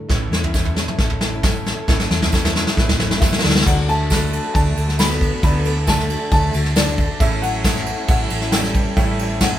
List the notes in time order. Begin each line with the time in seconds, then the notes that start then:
Already playing: A2
0.09 A1 A2 E3 A3 C#4 E4 A4 C#5 A5, kick, snare, floor tom
0.31 E2 E3 A3 C#4 E4, snare
0.43 A3 C#4 E4, floor tom
0.54 A2 E3 A3 C#4 E4 C#5, kick, snare, tambourine
0.65 A3 C#4 E4, floor tom
0.75 A3 C#4 E4 C#5, snare
0.88 A3 C#4 E4, mid tom
0.98 A1 A3 C#4 E4 C#5, kick, snare
1.10 A3 C#4 E4, floor tom
1.21 E3 A3 C#4 E4, snare
1.34 A3 C#4 E4
1.43 A2 E3 A3 C#4 E4 C#5, kick, snare, floor tom, mid tom, tambourine
1.66 E3 A3 C#4 E4, snare
1.88 A1 A2 E3 A3 C#4 E4 C#5, kick, snare, floor tom
2.00 snare
2.10 E2 E3 A3 C#4 E4, snare
2.21 A3 C#4 E4, snare, floor tom
2.32 A2 E3 A3 C#4 E4 C#5, kick, snare, tambourine
2.43 A3 C#4 E4, snare, floor tom
2.55 A3 C#4 E4 C#5, snare
2.66 A3 C#4 E4, snare
2.77 A1 A3 C#4 E4 B4, kick, snare
2.88 A3 C#4 E4, snare, floor tom
2.99 E3 A3 C#4 E4 E5, snare, mid tom
3.10 A3 C#4 E4, snare, mid tom
3.20 A2 E3 A3 C#4 E4 G4 E5 F#5, kick, snare, floor tom, mid tom, tambourine
3.33 snare
3.39 F#4 D5, snare
3.43 D2 D3 A3 D4 F#4 D5, snare
3.49 snare
3.55 snare
3.61 F#4 A4 A5, snare
3.65 D2 D3 F#3 A3 D4 F#4 A4 D5 F#5, kick, crash
3.88 D3 A3 D4 F#4 A5, ride
4.10 D3 F#3 A3 D4 F#4 A4 B4, kick, snare, ride, tambourine
4.32 D3 A3 D4 F#4, ride
4.44 A3 D4 F#4
4.54 D2 F#3 A3 D4 A4 D5 A5, kick, ride
4.65 A3 D4 F#4
4.76 D2 D3 A3 D4 F#4, ride
4.87 A3 D4 F#4, snare
4.99 D3 F#3 A3 B3 D4 F#4 A4 D5 B5, snare, ride, tambourine
5.10 snare
5.21 D3 A3 D4 F#4, kick, ride
5.32 A3 D4 F#4
5.42 D2 D3 F#3 A3 B3 D4 F#4 A4 D5 B5, kick, ride
5.64 D3 A3 D4 F#4, ride
5.87 D3 F#3 A3 D4 F#4 A4 D5 A5, kick, snare, ride, tambourine
5.99 snare
6.08 D3 A3 D4 F#4, ride
6.20 A3 D4 F#4
6.31 D2 F#3 A3 D4 A4 D5 A5, kick, ride
6.41 A3 D4 F#4
6.52 D2 D3 A3 D4 F#4, ride
6.64 A3 D4 F#4, snare
6.75 D3 F#3 A3 D4 F#4 A4 D5, snare, ride, tambourine
6.87 snare
6.98 D3 A3 D4 F#4, kick, ride
7.20 A1 A2 E3 A3 C#4 E4 C#5 E5, kick, ride
7.42 E3 F#3 A3 C#4 E4 F#5, ride
7.64 A2 E3 A3 C#4 E4 C#5 E5, kick, snare, ride, tambourine
7.76 snare
7.86 E3 A3 C#4 E4, ride
7.98 A3 C#4 E4
8.08 A1 F#3 A3 C#4 E4 C#5 E5 F#5, kick, ride
8.20 A3 C#4 E4
8.30 A1 E3 A3 C#4 E4, ride
8.41 A3 C#4 E4, snare
8.52 A2 E3 G3 A3 C#4 E4 C#5 E5 G5, snare, ride, tambourine
8.64 snare
8.75 E3 A3 C#4 E4, kick, ride
8.96 A1 A2 E3 G3 A3 C#4 E4 C#5 E5 G5, kick, ride
9.19 E3 A3 C#4 E4, ride
9.41 A2 E3 F#3 A3 C#4 E4 C#5 E5 F#5, kick, snare, ride, tambourine